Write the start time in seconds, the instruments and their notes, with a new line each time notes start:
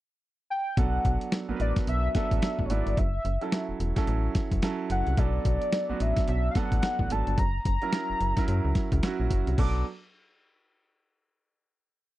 0.50 soft synth lead G5
0.77 fm bass B1, grand piano F#3 B3 D4 A4, soft synth lead F#5, kick, closed hi-hat
1.05 fm bass B1, kick, closed hi-hat
1.21 closed hi-hat
1.32 snare, closed hi-hat
1.49 fm bass A1, grand piano F#3 B3 D4 A#4
1.56 fm bass A1, grand piano B4, closed hi-hat
1.61 soft synth lead D5
1.76 kick, snare, closed hi-hat
1.87 fm bass B1, soft synth lead E5, closed hi-hat
2.15 grand piano F#3 B3 D4 A4, soft synth lead E5, kick, snare, closed hi-hat
2.31 fm bass A1, kick, closed hi-hat
2.42 snare, closed hi-hat
2.59 fm bass A1, kick
2.65 soft synth lead C#5
2.70 fm bass G#1, grand piano F#3 B3 D4 E4, soft synth lead D5, closed hi-hat
2.87 fm bass G1, closed hi-hat
2.97 fm bass F#1, soft synth lead E5, kick, closed hi-hat
3.25 fm bass F#1, closed hi-hat
3.41 grand piano F#3 C#4 E4 A4, closed hi-hat
3.52 snare, closed hi-hat
3.69 fm bass E1
3.80 fm bass E1, closed hi-hat
3.96 grand piano F#3 C#4 E4 A4, kick, snare, closed hi-hat
4.07 fm bass A1, closed hi-hat
4.35 kick, snare, closed hi-hat
4.52 fm bass F#1, kick, closed hi-hat
4.62 grand piano F#3 C#4 E4 A4, snare, closed hi-hat
4.90 fm bass F#1, soft synth lead F#5, closed hi-hat
5.07 fm bass C2, closed hi-hat
5.17 fm bass B1, grand piano F#3 B3 C#4 A4, soft synth lead D5, kick, closed hi-hat
5.25 grand piano D4
5.45 fm bass B1, kick, closed hi-hat
5.62 closed hi-hat
5.72 snare, closed hi-hat
5.89 fm bass A1, grand piano F#3 B3 C#4 F#4
5.97 fm bass A1, grand piano D4, closed hi-hat
6.01 soft synth lead E5
6.16 kick, snare, closed hi-hat
6.28 fm bass B1, soft synth lead E5, closed hi-hat
6.51 soft synth lead F5
6.55 grand piano F#3 B3 D4 A4, soft synth lead F#5, kick, snare, closed hi-hat
6.72 fm bass A1, kick, closed hi-hat
6.83 snare, closed hi-hat
6.99 fm bass A1, kick
7.10 fm bass G#1, grand piano F#3 B3 D4 A4, soft synth lead A5, closed hi-hat
7.27 fm bass G1, closed hi-hat
7.38 fm bass F#1, soft synth lead A#5, kick, closed hi-hat
7.65 fm bass F#1, soft synth lead A#5, kick, closed hi-hat
7.82 grand piano F#3 C#4 E4 A#4, closed hi-hat
7.92 snare, closed hi-hat
8.10 fm bass F#1
8.21 fm bass F#1, closed hi-hat
8.37 grand piano F#3 C#4 E4 A#4, kick, snare, closed hi-hat
8.48 fm bass F#2, closed hi-hat
8.65 fm bass C#2
8.75 kick, snare, closed hi-hat
8.92 fm bass C#2, kick, closed hi-hat
9.03 grand piano F#3 C#4 E4 F#4, snare, closed hi-hat
9.20 fm bass A#1
9.30 fm bass F#1, kick, closed hi-hat
9.47 fm bass C2, closed hi-hat
9.58 fm bass B1, grand piano F#3 B3 D4 A4, soft synth lead D6, kick, crash